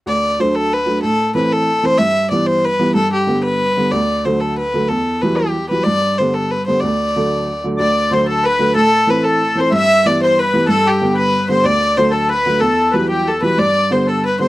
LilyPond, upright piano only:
\new Staff \with { instrumentName = "Upright piano" } { \clef bass \time 6/8 \key d \mixolydian \tempo 4. = 124 d,4 <fis a d'>4 r8 <fis a d'>8 | a,4 <e a c'>4 r8 <e a c'>8 | g,4 <e g b>4 r8 <e g b>8 | g,4 <d g b>4 r8 <d g b>8 |
d,4 <d fis a>4 r8 <d fis a>8 | e,4 <e fis g>4 r8 <e fis g>8 | g,4 <d g b>4 r8 <d g b>8 | d,4 <d fis a>4 r8 <d fis a>8 |
d,4 <d fis a>4 r8 <d fis a>8 | a,4 <e a c'>4 r8 <e a c'>8 | g,4 <e g b>4 r8 <e g b>8 | g,4 <d g b>4 r8 <d g b>8 |
d,4 <d fis a>4 r8 <d fis a>8 | e,4 <e fis g>4 r8 <e fis g>8 | g,4 <d g b>4 r8 <d g b>8 | }